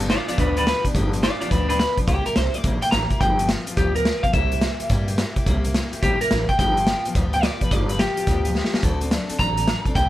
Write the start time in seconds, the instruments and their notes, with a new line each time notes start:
Already playing: upright bass G1
0.01 steel-string acoustic guitar F3 B3
0.09 steel-string acoustic guitar F3 B3 D4 G4, clean electric guitar F4 D5, snare, closed hi-hat
0.28 steel-string acoustic guitar F3 B3 D4 G4, clean electric guitar F4 D5, muted upright bass stroke, closed hi-hat
0.38 upright bass D2, steel-string acoustic guitar G2 D3 F3 B3 D4 G4, clean electric guitar D4 B4, kick, snare, closed hi-hat
0.56 steel-string acoustic guitar F3 B3 D4 G4, clean electric guitar D4 B4, closed hi-hat
0.66 steel-string acoustic guitar F3 B3 D4 G4, clean electric guitar B4, snare, closed hi-hat
0.85 steel-string acoustic guitar F3 B3 D4 G4, muted upright bass stroke, kick, closed hi-hat
0.95 upright bass G1, steel-string acoustic guitar G2 D3 F3 B3 D4 G4, kick, closed hi-hat
1.12 steel-string acoustic guitar F3 B3 D4 G4, closed hi-hat
1.22 steel-string acoustic guitar F3 B3 D4 G4, clean electric guitar F4 D5, snare, closed hi-hat
1.41 steel-string acoustic guitar F3 B3 D4 G4, clean electric guitar F4 D5, muted upright bass stroke, closed hi-hat
1.50 upright bass D2, steel-string acoustic guitar G2 D3 F3 B3 D4 G4, clean electric guitar D4 B4, kick, closed hi-hat
1.69 steel-string acoustic guitar F3 B3 D4 G4, clean electric guitar D4 B4, closed hi-hat
1.79 steel-string acoustic guitar F3 B3 D4 G4, clean electric guitar B4, snare, closed hi-hat
1.97 steel-string acoustic guitar F3 B3 D4 G4, muted upright bass stroke, kick, closed hi-hat
2.07 upright bass C2, steel-string acoustic guitar C3 G3 A#3 E4 G4, clean electric guitar G4, kick, closed hi-hat
2.26 steel-string acoustic guitar A#3 E4 G4, clean electric guitar A#4, muted upright bass stroke, closed hi-hat
2.35 upright bass C2, steel-string acoustic guitar G3 A#3 E4 G4, clean electric guitar C5, snare, closed hi-hat
2.54 steel-string acoustic guitar A#3 E4 G4, clean electric guitar D5, muted upright bass stroke, closed hi-hat
2.64 upright bass A#1, steel-string acoustic guitar C3 G3 A#3 E4 G4, kick, closed hi-hat
2.81 steel-string acoustic guitar A#3 E4 G4, clean electric guitar G5, muted upright bass stroke, closed hi-hat
2.91 upright bass A1, steel-string acoustic guitar G3 A#3 E4 G4, clean electric guitar A#5, snare, closed hi-hat
3.10 steel-string acoustic guitar A#3 E4 G4, muted upright bass stroke, kick, closed hi-hat
3.21 upright bass G1, steel-string acoustic guitar G2 D3 F3 B3 F4 G4, clean electric guitar G5, kick, closed hi-hat
3.39 steel-string acoustic guitar F3 B3 F4 G4, closed hi-hat
3.49 steel-string acoustic guitar F3 B3 F4 G4, snare, closed hi-hat
3.66 steel-string acoustic guitar F3 B3 F4 G4, muted upright bass stroke, closed hi-hat
3.77 upright bass D2, steel-string acoustic guitar G2 D3 F3 B3 F4 G4, clean electric guitar G4, kick, snare, closed hi-hat
3.95 steel-string acoustic guitar F3 B3 F4 G4, clean electric guitar A#4, closed hi-hat
4.05 steel-string acoustic guitar F3 B3 F4 G4, snare, closed hi-hat
4.23 steel-string acoustic guitar F3 B3 F4 G4, clean electric guitar F5, kick, closed hi-hat
4.33 upright bass C2, steel-string acoustic guitar C3 G3 A#3 E4 G4, clean electric guitar E5, kick, closed hi-hat
4.52 steel-string acoustic guitar A#3 E4 G4, closed hi-hat
4.61 steel-string acoustic guitar G3 A#3 E4 G4, snare, closed hi-hat
4.80 steel-string acoustic guitar A#3 E4 G4, muted upright bass stroke, closed hi-hat
4.90 upright bass G2, steel-string acoustic guitar C3 G3 A#3 E4 G4, kick, snare, closed hi-hat
5.08 steel-string acoustic guitar A#3 E4 G4, closed hi-hat
5.18 steel-string acoustic guitar G3 A#3 E4 G4, snare, closed hi-hat
5.36 steel-string acoustic guitar A#3 E4 G4, muted upright bass stroke, kick, closed hi-hat
5.46 upright bass C2, steel-string acoustic guitar C3 G3 A#3 E4 G4, kick, closed hi-hat
5.64 steel-string acoustic guitar A#3 E4 G4, closed hi-hat
5.74 steel-string acoustic guitar G3 A#3 E4 G4, snare, closed hi-hat
5.93 steel-string acoustic guitar A#3 E4 G4, muted upright bass stroke, closed hi-hat
6.03 upright bass A#1, steel-string acoustic guitar C3 G3 A#3 E4 G4, clean electric guitar G4, kick, closed hi-hat
6.21 steel-string acoustic guitar A#3 E4 G4, clean electric guitar A#4, muted upright bass stroke, closed hi-hat
6.31 upright bass A1, steel-string acoustic guitar G3 A#3 E4 G4, snare, closed hi-hat
6.49 steel-string acoustic guitar A#3 E4 G4, clean electric guitar G5, muted upright bass stroke, kick, closed hi-hat
6.59 upright bass G1, steel-string acoustic guitar G2 D3 F3 B3 F4 G4, clean electric guitar G5, kick, closed hi-hat
6.77 steel-string acoustic guitar F3 B3 F4 G4, closed hi-hat
6.87 steel-string acoustic guitar F3 B3 F4 G4, snare, closed hi-hat
7.05 steel-string acoustic guitar F3 B3 F4 G4, muted upright bass stroke, closed hi-hat
7.15 upright bass D2, steel-string acoustic guitar G2 D3 F3 B3 F4 G4, kick, closed hi-hat
7.33 steel-string acoustic guitar F3 B3 F4 G4, clean electric guitar G5, closed hi-hat
7.43 steel-string acoustic guitar F3 B3 F4 G4, clean electric guitar D5, snare, closed hi-hat
7.61 steel-string acoustic guitar F3 B3 F4 G4, clean electric guitar B4, muted upright bass stroke, kick, closed hi-hat
7.71 upright bass G1, steel-string acoustic guitar G2 D3 F3 B3 F4 G4, clean electric guitar D5, kick, closed hi-hat
7.89 steel-string acoustic guitar F3 B3 F4 G4, clean electric guitar B4, closed hi-hat
7.99 steel-string acoustic guitar F3 B3 F4 G4, clean electric guitar G4, snare, closed hi-hat
8.17 steel-string acoustic guitar F3 B3 F4 G4, muted upright bass stroke, closed hi-hat
8.27 upright bass D2, steel-string acoustic guitar G2 D3 F3 B3 F4 G4, kick, snare, closed hi-hat
8.45 steel-string acoustic guitar F3 B3 F4 G4, closed hi-hat
8.54 steel-string acoustic guitar F3 B3 F4 G4, snare
8.64 snare
8.73 steel-string acoustic guitar F3 B3 F4 G4, muted upright bass stroke, snare
8.82 upright bass D2, steel-string acoustic guitar D3 F#3 C4 D4 A4, kick, closed hi-hat
9.00 steel-string acoustic guitar C4 D4 A4, closed hi-hat
9.11 steel-string acoustic guitar F#3 C4 D4 A4, snare, closed hi-hat
9.29 steel-string acoustic guitar C4 D4 A4, muted upright bass stroke, closed hi-hat
9.39 upright bass A1, steel-string acoustic guitar D3 F#3 C4 D4 A4, clean electric guitar A#5, kick, snare, closed hi-hat
9.57 steel-string acoustic guitar C4 D4 A4, closed hi-hat
9.67 steel-string acoustic guitar F#3 C4 D4 A4, snare, closed hi-hat
9.85 steel-string acoustic guitar C4 D4 A4, muted upright bass stroke, kick, closed hi-hat
9.95 upright bass C2, steel-string acoustic guitar C3 G3 A#3 E4 G4, clean electric guitar G5, kick, closed hi-hat